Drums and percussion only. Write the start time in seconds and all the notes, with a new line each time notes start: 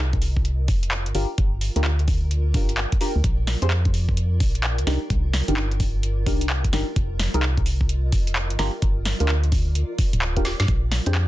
0.13 kick, closed hi-hat
0.22 open hi-hat
0.37 kick
0.45 closed hi-hat
0.68 kick, open hi-hat
0.83 closed hi-hat
0.91 clap
1.06 closed hi-hat
1.15 open hi-hat
1.38 kick, closed hi-hat
1.61 open hi-hat
1.76 closed hi-hat
1.84 clap
1.99 closed hi-hat
2.08 kick, open hi-hat
2.31 closed hi-hat
2.54 kick, open hi-hat
2.69 closed hi-hat
2.77 clap
2.92 kick, closed hi-hat
3.01 open hi-hat
3.24 kick, closed hi-hat
3.47 snare, open hi-hat
3.62 closed hi-hat
3.71 clap
3.85 kick, closed hi-hat
3.94 open hi-hat
4.09 kick
4.17 closed hi-hat
4.40 kick, open hi-hat
4.55 closed hi-hat
4.64 clap
4.78 closed hi-hat
4.87 snare, open hi-hat
5.10 kick, closed hi-hat
5.33 snare, open hi-hat
5.48 closed hi-hat
5.57 clap
5.71 closed hi-hat
5.80 kick, open hi-hat
6.03 closed hi-hat
6.26 kick, open hi-hat
6.41 closed hi-hat
6.50 clap
6.64 kick, closed hi-hat
6.73 snare, open hi-hat
6.96 kick, closed hi-hat
7.19 snare, open hi-hat
7.34 closed hi-hat
7.43 clap
7.57 kick, closed hi-hat
7.66 open hi-hat
7.81 kick
7.89 closed hi-hat
8.12 kick, open hi-hat
8.27 closed hi-hat
8.36 clap
8.50 closed hi-hat
8.59 snare, open hi-hat
8.82 kick, closed hi-hat
9.05 snare, open hi-hat
9.20 closed hi-hat
9.29 clap
9.44 closed hi-hat
9.52 kick, open hi-hat
9.75 closed hi-hat
9.98 kick, open hi-hat
10.13 closed hi-hat
10.22 clap
10.36 kick, closed hi-hat
10.45 snare, open hi-hat
10.60 snare, closed hi-hat
10.68 kick, closed hi-hat
10.92 snare, open hi-hat
11.06 closed hi-hat
11.15 clap